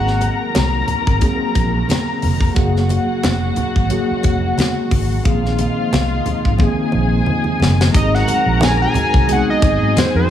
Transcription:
0.00 0.27 G#1 medium
0.00 2.54 D#3 medium
0.00 0.89 F#3 medium
0.00 7.91 G#3 medium
0.00 0.90 A#3 medium
0.00 7.92 A#3 medium
0.00 0.91 C4 medium
0.00 2.54 C4 medium
0.00 2.54 F#4 medium
0.00 0.91 G#4 medium
0.00 2.53 A#4 medium
0.00 0.36 F#5 medium
0.00 2.53 A#5 medium
0.07 snare soft
0.21 closed hi-hat medium
0.21 muted conga soft
0.55 0.81 C2 medium
0.55 snare loud
0.55 closed hi-hat medium
0.55 high conga medium
0.88 closed hi-hat medium
0.88 low conga medium
1.07 1.19 G#1 medium
1.07 kick medium
1.19 2.24 F#3 medium
1.19 2.25 A#3 medium
1.19 2.25 C4 medium
1.19 2.26 G#4 medium
1.19 kick medium
1.19 closed hi-hat medium
1.19 muted conga soft
1.19 low conga medium
1.55 1.81 A#1 medium
1.55 kick medium
1.55 closed hi-hat medium
1.55 muted conga soft
1.89 snare loud
1.89 closed hi-hat loud
1.89 high conga medium
2.22 2.49 F1 medium
2.22 open hi-hat medium
2.22 high conga medium
2.40 kick medium
2.54 2.96 F#1 medium
2.54 5.23 C#3 medium
2.54 3.59 F#3 medium
2.54 5.23 F#3 medium
2.54 3.60 A#3 medium
2.54 5.23 F#4 medium
2.54 5.22 F#4 medium
2.54 3.60 F#4 medium
2.54 3.61 G#4 medium
2.54 5.22 F#5 medium
2.54 kick loud
2.54 closed hi-hat medium
2.54 muted conga soft
2.77 snare soft
2.89 closed hi-hat medium
2.89 muted conga soft
3.23 3.50 F1 medium
3.23 snare loud
3.23 closed hi-hat medium
3.23 high conga medium
3.56 closed hi-hat medium
3.56 low conga medium
3.76 3.88 G#1 medium
3.76 kick medium
3.89 4.94 F#3 medium
3.89 4.94 A#3 medium
3.89 4.95 F#4 medium
3.89 4.95 G#4 medium
3.89 closed hi-hat medium
3.89 muted conga soft
4.11 muted fingered electric bass stroke soft
4.23 4.50 F1 medium
4.23 kick medium
4.23 closed hi-hat medium
4.23 muted conga soft
4.58 snare medium
4.58 closed hi-hat loud
4.58 high conga medium
4.91 5.18 G#1 medium
4.91 kick medium
4.91 open hi-hat medium
4.91 high conga medium
5.23 5.65 A#1 loud
5.23 7.91 C3 medium
5.23 6.28 D#3 medium
5.23 7.91 F3 medium
5.23 6.29 A#3 medium
5.23 6.29 C4 medium
5.23 7.91 D#4 medium
5.23 6.58 F4 medium
5.23 6.30 G#4 medium
5.23 6.58 F5 medium
5.23 kick loud
5.23 closed hi-hat medium
5.23 muted conga soft
5.46 snare soft
5.59 closed hi-hat medium
5.59 muted conga soft
5.92 6.18 C2 medium
5.92 snare loud
5.92 closed hi-hat medium
5.92 high conga medium
6.26 closed hi-hat medium
6.26 low conga medium
6.45 6.57 G#1 medium
6.45 kick medium
6.58 7.62 D#3 medium
6.58 7.63 A#3 medium
6.58 7.64 C4 medium
6.58 7.92 G#4 medium
6.58 7.64 G#4 medium
6.58 7.92 G#5 medium
6.58 kick medium
6.58 muted conga soft
6.58 low conga medium
6.92 7.20 A#1 medium
6.92 muted conga soft
7.26 high conga medium
7.44 high conga soft
7.60 7.87 F#1 medium
7.60 snare medium
7.60 high conga medium
7.81 snare medium
7.91 8.21 G#1 loud
7.91 10.30 D#3 medium
7.91 8.96 F#3 medium
7.91 10.30 F#3 medium
7.91 8.97 G#3 medium
7.91 10.30 G#3 medium
7.91 8.97 C4 medium
7.91 8.98 D#4 medium
7.91 8.02 G4 medium
7.91 9.26 A#4 medium
7.91 9.26 A#5 medium
7.91 kick loud
7.91 closed hi-hat medium
7.96 10.30 C4 medium
7.96 10.30 F#4 medium
7.96 8.16 D#5 loud
8.02 9.01 G#4 medium
8.15 8.63 F#5 loud
8.15 snare soft
8.28 closed hi-hat medium
8.28 muted conga soft
8.46 8.83 A#1 medium
8.61 8.71 G#5 loud
8.61 snare loud
8.61 closed hi-hat medium
8.61 high conga medium
8.82 9.34 G#5 loud
8.94 muted fingered electric bass stroke soft
8.94 closed hi-hat medium
8.94 low conga medium
9.14 9.40 C2 medium
9.14 kick medium
9.26 10.30 F#3 medium
9.26 10.30 G#3 medium
9.26 9.35 B3 medium
9.26 10.30 D#4 medium
9.26 10.30 G#4 medium
9.26 10.30 G#5 medium
9.26 closed hi-hat medium
9.26 muted conga soft
9.30 10.30 G#4 medium
9.30 9.49 F#5 loud
9.34 10.30 C4 medium
9.50 10.00 D#5 loud
9.62 9.77 G#1 medium
9.62 kick loud
9.62 closed hi-hat medium
9.62 muted conga soft
9.62 low conga medium
9.81 9.93 G#2 medium
9.96 10.15 C5 medium
9.96 snare loud
9.96 closed hi-hat loud
9.96 high conga medium
10.14 10.26 F2 medium
10.14 10.30 C5 loud

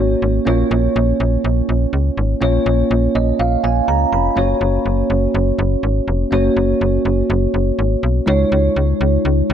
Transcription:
0.00 0.16 G#1 medium
0.00 0.45 A#3 medium
0.00 0.46 C#4 medium
0.00 0.48 F#4 medium
0.00 0.48 C#5 medium
0.22 0.40 G#1 medium
0.45 0.64 A#1 loud
0.45 2.37 A#3 medium
0.45 2.38 C#4 medium
0.45 2.38 F4 medium
0.45 2.39 C#5 medium
0.71 0.89 A#1 loud
0.96 1.13 A#1 loud
1.20 1.38 A#1 loud
1.44 1.62 A#1 medium
1.69 1.86 A#1 medium
1.93 2.11 C#2 medium
2.17 2.35 G#1 medium
2.41 2.59 A#1 loud
2.41 4.33 A#3 medium
2.41 4.33 C#4 medium
2.41 4.33 F4 medium
2.41 4.34 C#5 medium
2.66 2.84 A#1 loud
2.91 3.08 A#1 medium
3.15 3.33 A#1 medium
3.15 3.38 D#5 medium
3.39 3.57 A#1 medium
3.39 3.62 F5 medium
3.64 3.81 A#1 medium
3.64 3.86 G#5 medium
3.88 4.06 C#2 medium
3.88 4.11 A#5 medium
4.12 4.30 F1 medium
4.12 4.35 B5 medium
4.36 4.54 F#1 loud
4.36 6.28 A#3 medium
4.36 6.28 C#4 medium
4.36 6.28 F#4 medium
4.36 6.29 C#5 medium
4.61 4.79 F#1 loud
4.86 5.03 F#1 medium
5.10 5.28 F#1 medium
5.34 5.52 F#1 loud
5.59 5.76 F#1 loud
5.83 6.01 G#1 medium
6.08 6.25 F1 medium
6.31 6.50 F#1 loud
6.31 8.23 A#3 medium
6.31 8.23 C#4 medium
6.31 8.24 F#4 medium
6.31 8.24 C#5 medium
6.57 6.74 F#1 medium
6.81 6.99 F#1 medium
7.05 7.23 F#1 medium
7.30 7.47 F#1 loud
7.54 7.72 F#1 medium
7.79 7.96 G#1 medium
8.03 8.21 B1 medium
8.26 8.45 C#2 loud
8.26 9.53 G#3 medium
8.26 9.53 D#4 medium
8.26 9.53 F4 medium
8.26 9.53 C#5 medium
8.52 8.69 C#2 loud
8.76 8.94 C#2 medium
9.01 9.18 C#2 medium
9.25 9.43 C#2 medium
9.50 9.53 C#2 medium

